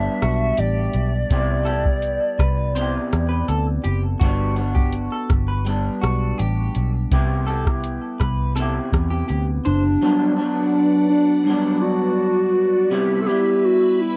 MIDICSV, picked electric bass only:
0, 0, Header, 1, 2, 480
1, 0, Start_track
1, 0, Key_signature, 1, "major"
1, 0, Tempo, 725514
1, 863, Time_signature, 4, 2, 24, 8
1, 9374, End_track
2, 0, Start_track
2, 0, Title_t, "Picked electric bass"
2, 0, Program_c, 0, 34
2, 150, Note_on_c, 0, 35, 81
2, 339, Note_off_c, 0, 35, 0
2, 388, Note_on_c, 0, 33, 86
2, 578, Note_off_c, 0, 33, 0
2, 626, Note_on_c, 0, 35, 86
2, 816, Note_off_c, 0, 35, 0
2, 866, Note_on_c, 0, 36, 94
2, 1438, Note_off_c, 0, 36, 0
2, 1583, Note_on_c, 0, 36, 79
2, 1967, Note_off_c, 0, 36, 0
2, 2072, Note_on_c, 0, 40, 85
2, 2261, Note_off_c, 0, 40, 0
2, 2307, Note_on_c, 0, 38, 91
2, 2498, Note_off_c, 0, 38, 0
2, 2549, Note_on_c, 0, 30, 84
2, 2739, Note_off_c, 0, 30, 0
2, 2786, Note_on_c, 0, 31, 92
2, 3359, Note_off_c, 0, 31, 0
2, 3508, Note_on_c, 0, 31, 92
2, 3891, Note_off_c, 0, 31, 0
2, 3992, Note_on_c, 0, 35, 77
2, 4181, Note_off_c, 0, 35, 0
2, 4234, Note_on_c, 0, 33, 79
2, 4423, Note_off_c, 0, 33, 0
2, 4475, Note_on_c, 0, 35, 76
2, 4663, Note_off_c, 0, 35, 0
2, 4707, Note_on_c, 0, 36, 92
2, 5280, Note_off_c, 0, 36, 0
2, 5430, Note_on_c, 0, 36, 76
2, 5812, Note_off_c, 0, 36, 0
2, 5907, Note_on_c, 0, 40, 83
2, 6099, Note_off_c, 0, 40, 0
2, 6154, Note_on_c, 0, 38, 86
2, 6343, Note_off_c, 0, 38, 0
2, 6399, Note_on_c, 0, 30, 84
2, 6585, Note_off_c, 0, 30, 0
2, 9374, End_track
0, 0, End_of_file